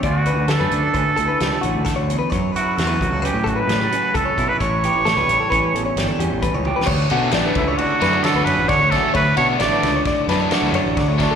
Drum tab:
CC |------------------------------|------------------------------|------------------------------|x-----------------------------|
RD |------------------------------|------------------------------|------------------------------|---x--x--x--x--x--x--x--x--x--|
HH |x--x--x--x--x--x--x--x--x--x--|x--x--x--x--x--x--x--x--x--x--|x--x--x--x--x--x--x--x--x-----|------------------------------|
SD |------o-----------o-----o-----|------o-----------o-----------|------o-----------o----------o|------o--------o--o-----o--o--|
T1 |------------------------------|------------------------------|---------------------------o--|------------------------------|
BD |o-----------o-----------o-----|o--------o-----o--------o--o--|o-----------o-----------o-----|o--------o--------------o--o--|

CC |------------------------------|
RD |x--x--x--x--x--x--x--x--x--x--|
HH |------------------------------|
SD |------o--o--o--o--o-----o--o--|
T1 |------------------------------|
BD |o-----------o-----------o--o--|